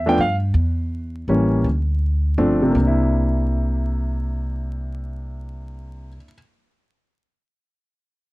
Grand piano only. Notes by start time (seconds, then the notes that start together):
0.06 F3 A3 B3 D4 G5
0.21 F5
1.29 E3 G3 A#3 C#4
2.38 F3 A3 C4 D4
2.62 C3
2.70 A#3
2.79 D4
2.87 E4